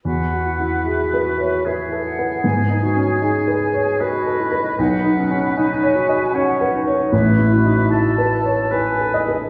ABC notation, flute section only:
X:1
M:3/4
L:1/8
Q:1/4=77
K:E
V:1 name="Flute section"
f2 e2 e f | g2 g2 d2 | f2 g2 f2 | e2 a2 g z |]